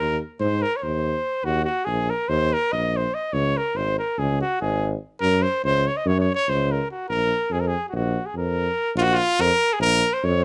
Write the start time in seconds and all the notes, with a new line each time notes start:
Already playing: D#2 A#4
0.40 G#2 C5
0.62 A#4
0.77 C#5
0.83 D#2 C5
1.44 D#2 F#4
1.65 F#4
1.85 A#1 G#4
2.10 A#4
2.29 D#2 C5
2.53 A#4
2.72 A#1 D#5
2.97 C5
3.14 D#5
3.33 C#2 C#5
3.57 A#4
3.74 G#1 C5
3.99 A#4
4.18 C#2 G#4
4.41 F#4
4.61 G#1 G#4
5.21 F#2 A#4
5.43 C5
5.64 C#2 C5
5.87 C#5
5.97 D#5
6.06 F#2 C#5
6.20 C#5
6.34 C#5
6.49 C#2 C5
6.72 A#4
6.91 F#4
7.09 A#1 A#4
7.50 F2 G#4
7.60 A#4
7.68 G#4
7.89 A#1 F#4
7.96 F#4
8.26 G#4
8.35 F2 A#4
8.95 A#1 F4
9.01 F#4
9.13 F4
9.39 F2 A#4
9.73 G#4
9.79 A#1 A#4
10.14 C5
10.23 F2 C#5